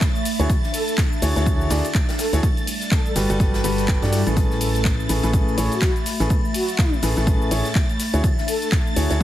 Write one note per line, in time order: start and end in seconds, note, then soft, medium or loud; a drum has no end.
0.00 3.21 A3 medium
0.00 3.21 E5 medium
0.00 1.14 B5 medium
0.00 4.36 A6 medium
0.00 kick loud
0.00 snare loud
0.00 clap loud
0.00 closed hi-hat medium
0.00 shaker soft
0.15 closed hi-hat soft
0.15 shaker soft
0.25 3.21 D4 medium
0.25 closed hi-hat medium
0.25 open hi-hat loud
0.25 ride medium
0.25 shaker medium
0.39 0.47 D2 loud
0.39 0.50 D3 medium
0.39 0.50 E4 medium
0.39 0.50 F#4 medium
0.39 0.50 G#4 medium
0.39 0.50 C#5 loud
0.39 closed hi-hat medium
0.39 shaker soft
0.50 kick loud
0.50 closed hi-hat medium
0.50 shaker soft
0.63 snare soft
0.63 shaker soft
0.74 0.83 A4 medium
0.74 closed hi-hat medium
0.74 open hi-hat loud
0.74 ride medium
0.74 shaker medium
0.88 0.94 A4 medium
0.88 closed hi-hat medium
0.88 shaker soft
0.98 kick loud
0.98 snare loud
0.98 clap loud
0.98 closed hi-hat medium
0.98 shaker soft
1.13 shaker soft
1.22 1.33 D2 loud
1.22 1.33 D3 medium
1.22 1.33 E4 medium
1.22 1.33 F#4 medium
1.22 1.33 G#4 medium
1.22 1.33 C#5 medium
1.22 closed hi-hat medium
1.22 open hi-hat loud
1.22 ride medium
1.22 shaker medium
1.36 1.69 D2 loud
1.36 1.68 D3 loud
1.36 1.68 E4 medium
1.36 1.68 F#4 medium
1.36 1.68 G#4 medium
1.36 1.68 C#5 loud
1.36 snare soft
1.36 closed hi-hat medium
1.36 shaker soft
1.46 kick loud
1.46 closed hi-hat medium
1.46 shaker soft
1.61 shaker soft
1.70 1.82 D2 loud
1.70 1.85 D3 medium
1.70 1.85 E4 medium
1.70 1.85 F#4 medium
1.70 1.85 G#4 medium
1.70 1.85 D5 loud
1.70 snare loud
1.70 closed hi-hat medium
1.70 open hi-hat loud
1.70 ride medium
1.70 shaker medium
1.85 closed hi-hat medium
1.85 shaker soft
1.94 kick loud
1.94 snare medium
1.94 clap loud
1.94 closed hi-hat medium
1.94 shaker soft
2.09 snare loud
2.09 closed hi-hat soft
2.09 closed hi-hat medium
2.09 shaker soft
2.19 2.39 A4 medium
2.19 snare loud
2.19 closed hi-hat medium
2.19 open hi-hat loud
2.19 ride medium
2.19 shaker medium
2.33 2.40 D2 loud
2.33 2.42 E4 medium
2.33 2.42 F#4 medium
2.33 2.42 G#4 medium
2.33 2.42 C#5 loud
2.33 snare soft
2.33 closed hi-hat medium
2.33 shaker soft
2.43 4.37 G3 medium
2.43 kick loud
2.43 closed hi-hat medium
2.43 shaker soft
2.57 closed hi-hat soft
2.57 shaker soft
2.65 4.37 D5 medium
2.65 closed hi-hat medium
2.65 open hi-hat loud
2.65 ride medium
2.65 shaker medium
2.81 snare soft
2.81 closed hi-hat medium
2.81 shaker soft
2.91 3.01 A4 medium
2.91 kick loud
2.91 snare loud
2.91 clap loud
2.91 closed hi-hat medium
2.91 shaker soft
3.06 3.12 A4 medium
3.06 closed hi-hat soft
3.06 shaker soft
3.16 3.27 G1 loud
3.16 3.26 G3 medium
3.16 3.26 F#4 medium
3.16 3.26 G4 medium
3.16 3.26 A4 medium
3.16 3.26 B4 medium
3.16 snare loud
3.16 closed hi-hat medium
3.16 open hi-hat loud
3.16 ride medium
3.16 shaker medium
3.30 3.62 G1 loud
3.30 3.62 G3 loud
3.30 3.62 F#4 medium
3.30 3.62 G4 medium
3.30 3.62 A4 medium
3.30 3.62 B4 loud
3.30 closed hi-hat medium
3.30 shaker soft
3.40 kick loud
3.40 snare soft
3.40 closed hi-hat medium
3.40 shaker soft
3.54 snare loud
3.54 closed hi-hat medium
3.54 shaker soft
3.64 4.00 G1 loud
3.64 3.99 G3 loud
3.64 3.99 F#4 medium
3.64 3.99 G4 medium
3.64 3.99 A4 medium
3.64 3.99 B4 loud
3.64 open hi-hat loud
3.64 ride medium
3.64 shaker medium
3.78 closed hi-hat medium
3.78 shaker soft
3.88 kick loud
3.88 snare loud
3.88 clap loud
3.88 closed hi-hat medium
3.88 shaker soft
4.02 4.24 G2 loud
4.02 4.21 G3 loud
4.02 4.21 F#4 medium
4.02 4.21 G4 medium
4.02 4.21 A4 medium
4.02 4.21 D5 loud
4.02 snare loud
4.02 closed hi-hat soft
4.02 closed hi-hat medium
4.02 shaker soft
4.12 4.22 E4 medium
4.12 snare loud
4.12 closed hi-hat medium
4.12 open hi-hat loud
4.12 ride medium
4.12 shaker medium
4.27 5.07 A1 loud
4.27 5.07 A2 medium
4.27 5.07 C#4 medium
4.27 4.33 E4 medium
4.27 5.07 G#4 medium
4.27 5.07 A4 medium
4.27 5.07 B4 medium
4.27 closed hi-hat medium
4.27 shaker soft
4.37 9.23 A3 medium
4.37 9.23 A6 medium
4.37 kick loud
4.37 closed hi-hat medium
4.37 closed hi-hat loud
4.37 shaker soft
4.49 8.88 B5 medium
4.49 snare soft
4.49 shaker soft
4.61 4.70 A4 medium
4.61 9.23 E5 medium
4.61 closed hi-hat medium
4.61 open hi-hat loud
4.61 ride medium
4.61 shaker medium
4.75 4.82 A4 medium
4.75 closed hi-hat medium
4.75 shaker soft
4.84 kick loud
4.84 snare loud
4.84 clap loud
4.84 closed hi-hat medium
4.84 closed hi-hat loud
4.84 shaker soft
5.00 shaker soft
5.09 5.21 A1 loud
5.09 5.20 A2 medium
5.09 5.20 C#4 medium
5.09 5.20 G#4 medium
5.09 5.20 A4 medium
5.09 5.20 B4 medium
5.09 closed hi-hat medium
5.09 open hi-hat loud
5.09 ride medium
5.09 shaker medium
5.23 5.56 A1 loud
5.23 5.55 A2 medium
5.23 5.55 C#4 medium
5.23 5.55 G#4 medium
5.23 5.55 A4 medium
5.23 5.55 B4 loud
5.23 snare soft
5.23 closed hi-hat medium
5.23 shaker soft
5.33 kick loud
5.33 closed hi-hat medium
5.33 shaker soft
5.48 shaker soft
5.58 5.69 A1 medium
5.58 5.72 A2 medium
5.58 5.72 C#4 medium
5.58 5.72 G#4 medium
5.58 5.72 A4 medium
5.58 5.72 C#5 medium
5.58 closed hi-hat medium
5.58 open hi-hat loud
5.58 ride medium
5.58 shaker medium
5.72 5.90 F#4 loud
5.72 closed hi-hat medium
5.72 shaker soft
5.82 kick loud
5.82 snare loud
5.82 clap loud
5.82 closed hi-hat medium
5.82 shaker soft
5.96 closed hi-hat soft
5.96 shaker soft
6.06 snare medium
6.06 closed hi-hat medium
6.06 open hi-hat loud
6.06 ride medium
6.06 shaker medium
6.20 6.28 A1 medium
6.20 6.30 A2 medium
6.20 6.30 C#4 medium
6.20 6.30 G#4 medium
6.20 6.30 A4 medium
6.20 6.30 B4 loud
6.20 snare medium
6.20 closed hi-hat medium
6.20 shaker soft
6.30 kick loud
6.30 closed hi-hat medium
6.30 shaker soft
6.45 shaker soft
6.54 6.93 F#4 loud
6.54 closed hi-hat medium
6.54 open hi-hat loud
6.54 ride medium
6.54 shaker medium
6.69 closed hi-hat medium
6.69 shaker soft
6.78 kick loud
6.78 snare loud
6.78 clap loud
6.78 closed hi-hat medium
6.78 shaker soft
6.93 shaker soft
7.02 7.14 A1 loud
7.02 7.14 A2 medium
7.02 7.14 C#4 medium
7.02 7.14 G#4 medium
7.02 7.14 A4 medium
7.02 7.14 B4 medium
7.02 snare loud
7.02 closed hi-hat medium
7.02 open hi-hat loud
7.02 ride medium
7.02 shaker medium
7.17 7.49 A1 loud
7.17 7.49 A2 loud
7.17 7.49 C#4 medium
7.17 7.49 G#4 medium
7.17 7.49 A4 medium
7.17 7.49 B4 loud
7.17 snare medium
7.17 closed hi-hat medium
7.17 shaker soft
7.27 kick loud
7.27 closed hi-hat medium
7.27 shaker soft
7.42 shaker soft
7.51 7.62 A1 loud
7.51 7.65 A2 medium
7.51 7.65 C#4 medium
7.51 7.65 G#4 medium
7.51 7.65 A4 medium
7.51 7.65 C#5 medium
7.51 closed hi-hat medium
7.51 open hi-hat loud
7.51 ride medium
7.51 shaker medium
7.65 snare medium
7.65 closed hi-hat medium
7.65 shaker soft
7.75 kick loud
7.75 snare loud
7.75 clap loud
7.75 closed hi-hat medium
7.75 shaker soft
7.89 closed hi-hat soft
7.89 shaker soft
8.00 9.23 D4 loud
8.00 snare soft
8.00 closed hi-hat medium
8.00 open hi-hat loud
8.00 ride medium
8.00 shaker medium
8.14 8.22 D2 loud
8.14 8.24 D3 medium
8.14 8.24 E4 medium
8.14 8.24 F#4 medium
8.14 8.24 G#4 medium
8.14 8.24 C#5 loud
8.14 closed hi-hat medium
8.14 shaker soft
8.24 kick loud
8.24 closed hi-hat medium
8.24 shaker soft
8.38 snare soft
8.38 shaker soft
8.48 8.57 A4 medium
8.48 closed hi-hat medium
8.48 open hi-hat loud
8.48 ride medium
8.48 shaker medium
8.62 8.69 A4 medium
8.62 closed hi-hat medium
8.62 shaker soft
8.72 kick loud
8.72 snare loud
8.72 clap loud
8.72 closed hi-hat medium
8.72 closed hi-hat loud
8.72 shaker soft
8.87 shaker soft
8.96 9.08 D2 loud
8.96 9.07 D3 medium
8.96 9.07 E4 medium
8.96 9.07 F#4 medium
8.96 9.07 G#4 medium
8.96 9.07 C#5 medium
8.96 closed hi-hat medium
8.96 open hi-hat loud
8.96 ride medium
8.96 shaker medium
9.10 9.23 D2 loud
9.10 9.23 D3 medium
9.10 9.23 E4 medium
9.10 9.23 F#4 medium
9.10 9.23 G#4 medium
9.10 9.23 C#5 loud
9.10 snare medium
9.10 closed hi-hat medium
9.10 shaker soft